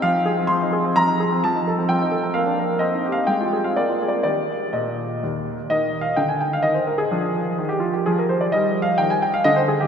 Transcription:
0.02 F3 F5
0.14 D#4
0.26 G#4
0.38 C4
0.47 F3 C6
0.62 D#4
0.73 G#4
0.85 C4
0.96 F3 A#5
1.07 D#4
1.20 G#4
1.32 C4
1.44 F3 A5
1.55 D#4
1.67 A4
1.78 C4
1.89 F3 G5
2.02 D#4
2.12 A4
2.24 C4
2.34 A#3 F5
2.46 D4
2.59 A#4
2.70 A#3
2.79 C4 D#5
2.93 D#4
3.06 G4
3.12 F5
3.17 D#4
3.27 G#3 G5
3.41 F4
3.53 G#4
3.64 C4 F5
3.76 A#3 D5
3.90 F4
4.02 G#4
4.08 D5
4.13 A#3
4.23 D#3 D#4 G4 D5
4.73 A#2 D#5
5.23 D#2
5.70 D#3 D#4 D#5
6.01 F5
6.16 D3 G5
6.28 G#5
6.41 G5
6.53 F5
6.63 D#3 D#5
6.74 C5
6.87 A#4
6.98 G#4
7.11 F3 D4
7.58 D#3
7.69 G4
7.80 F4
7.94 G4
8.06 F3 G#4
8.19 A#4
8.29 C5
8.41 D5
8.52 G3 D#4 D#5
8.82 F5
8.98 D#3 G5
9.10 G#5
9.22 G5
9.34 F5
9.44 D3 D#5
9.56 C5
9.68 G#4
9.81 G4

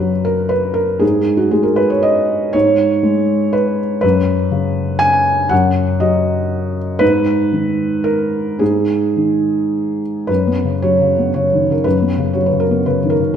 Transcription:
Already playing: F#2 C#3 B4
0.00 F#3
0.25 A#4
0.49 B4
0.74 A#4
0.99 G#2 G#4
1.37 F#4
1.51 G#3 G#4
1.63 A#4
1.76 B4
1.90 C#5
2.02 D#5
2.53 G#2 C#5
3.03 G#3
3.53 B4
4.01 F#2 B4
4.51 C#3
4.99 G#5
5.49 F#2 F#5
6.00 F#3 D#5
6.99 G#2 B4
7.53 D#3
8.04 A#4
8.59 G#2 G#4
9.17 D#3
10.27 F#2 B4
10.47 B3
10.65 C#3
10.82 F#3 C#5
11.01 C#3
11.19 B3
11.34 C#3 C#5
11.53 D#3
11.70 C#3 A#4
11.84 F#2 B4
12.02 B3
12.18 C#3
12.33 F#3 C#5
12.46 B4
12.53 C#3
12.60 A#4
12.71 B3
12.86 C#3 B4
13.03 D#3
13.10 A#4
13.20 C#3

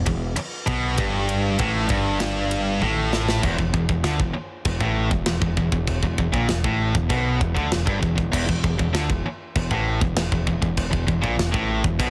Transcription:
0.06 E1 E2, kick, ride
0.36 muted distorted electric guitar stroke, muted picked electric bass stroke, ride
0.66 B1 B2, kick, ride
0.97 G1 G2, kick, ride
1.29 ride
1.58 A1 A2, kick, ride
1.87 G1 G2, kick, ride
2.20 snare, ride
2.51 ride
2.81 A1 A2, high tom
3.13 snare
3.28 snare
3.42 E1 E2, kick, china
3.58 E1 E2, kick
3.73 E1 E2, kick
3.89 E1 E2, kick
4.04 D2 D3, snare, china
4.19 E1 E2, kick
4.34 muted distorted electric guitar stroke, muted picked electric bass stroke
4.65 E1 E2, kick, china
4.81 A1 A2, kick
5.10 E1 E2, kick
5.26 E1 E2, snare, china
5.41 E1 E2, kick
5.57 E1 E2, kick
5.72 E1 E2, kick
5.87 kick, china
6.02 E1 E2, kick
6.18 E1 E2, kick
6.32 A#1 A#2, kick
6.48 E1 E2, snare, china
6.64 A1 A2, kick
6.94 E1 E2, kick
7.09 B1 B2, kick, china
7.40 E1 E2, kick
7.55 D2 D3, kick
7.71 E1 E2, snare, china
7.86 G1 G2, kick
8.00 E1 E2, kick
8.15 E1 E2, kick
8.32 E1 E2, kick, crash, china
8.47 E1 E2, kick
8.64 E1 E2, kick
8.78 E1 E2, kick
8.93 D2 D3, snare, china
9.09 E1 E2, kick
9.24 muted picked electric bass stroke, muted distorted electric guitar stroke
9.55 E1 E2, kick, china
9.71 A1 A2, kick
10.01 E1 E2, kick
10.15 E1 E2, snare, china
10.32 E1 E2, kick
10.47 E1 E2, kick
10.62 E1 E2, kick
10.77 kick, china
10.91 E1 E2, kick
11.07 E1 E2, kick
11.21 A#1 A#2, kick
11.36 E1 E2, snare, china
11.52 A1 A2, kick
11.84 E1 E2, kick
11.99 B1 B2, kick, china

